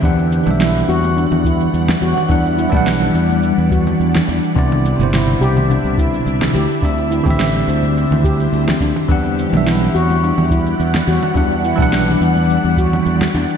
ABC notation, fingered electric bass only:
X:1
M:4/4
L:1/16
Q:1/4=106
K:Em
V:1 name="Fingered electric bass" clef=bass
E,,3 B,,,3 E,,3 E,,3 E,, z E,, z | E,,3 B,,,3 E,,3 E,,3 E,, z E,, z | C,,3 G,,,3 C,,3 C,,3 C,, z D,, z | D,,3 A,,,3 D,,3 D,,3 D,, z D,, z |
E,,3 B,,,3 E,,3 E,,3 E,, z E,, z | E,,3 B,,,3 E,,3 E,,3 E,, z E,, z |]